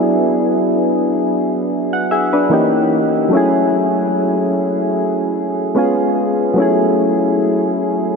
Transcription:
Already playing: F#3 B3 D4 E4 G#4
1.93 F#5
2.11 G#4 E5
2.33 D4 B4
2.50 E3 A#3 C#4 D#4 G4
3.29 F#3 A3
3.33 C#4 E4 G#4
5.75 G#3 B3 C#4 F4 G#4
6.54 F#3 A3
6.58 C#4 E4 G#4

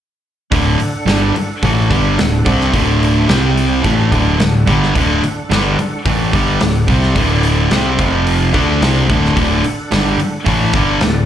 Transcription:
0.50 D1 D2 A2 D3 D4 A4 F#5, kick, open hi-hat
0.80 muted distorted electric guitar stroke, open hi-hat
1.06 G1 G2 D3 G3, snare, open hi-hat
1.36 muted distorted electric guitar stroke, open hi-hat
1.63 A1 A2 E3 A3, kick, open hi-hat
1.91 G1 G2 D3 G3, kick, open hi-hat
2.19 D1 D2 A2, snare, open hi-hat
2.46 C2 C3 G3 C4, kick, open hi-hat
2.61 snare
2.73 D1 D2 A2 D3 D4 F#4 A4, kick, open hi-hat
3.03 open hi-hat
3.29 C2 C3 G3 C4 G4 G5, snare, open hi-hat
3.57 open hi-hat
3.82 A1 A2 E3 D4 A4 F#5, kick, open hi-hat
3.86 A2 A3
4.12 D1 D2 A2 D3, kick, open hi-hat
4.40 D1 D2 A2, snare, open hi-hat
4.67 G1 G2 D3 G3, kick, snare, open hi-hat
4.83 snare
4.95 D1 D2 A2 D3, kick, open hi-hat
5.23 muted picked electric bass stroke, muted distorted electric guitar stroke, open hi-hat
5.51 G1 G2 D3 G3, snare, open hi-hat
5.79 muted distorted electric guitar stroke, open hi-hat
6.04 A1 A2 E3 A3 A4 D5 F#5, kick, open hi-hat
6.33 G1 G2 D3 G3, kick, open hi-hat
6.61 D1 D2 A2, snare, open hi-hat
6.88 C2 C3 G3 C4, kick, open hi-hat
7.03 snare
7.16 D1 D2 A2 D3, kick, open hi-hat
7.43 open hi-hat
7.71 C2 C3 G3 C4, snare, open hi-hat
7.96 F1 F2 C3 F3 C4 F4 F5, kick, open hi-hat
8.27 open hi-hat
8.52 D2 D3 A3 D4 A4 F#5, kick, open hi-hat
8.81 C2 C3 G3 C4, snare, open hi-hat
9.08 D1 D2 A2 D3, kick, open hi-hat
9.25 snare
9.37 D1 D2 A2 D3, kick, open hi-hat
9.64 muted distorted electric guitar stroke, muted picked electric bass stroke, open hi-hat
9.92 G1 G2 D3 G3, snare, open hi-hat
10.19 muted picked electric bass stroke, muted distorted electric guitar stroke, open hi-hat
10.46 A1 A2 E3 A3, kick, open hi-hat
10.73 G1 G2 D3 G3 A4 D5 F#5, kick, open hi-hat
11.01 D1 D2 A2, snare, open hi-hat

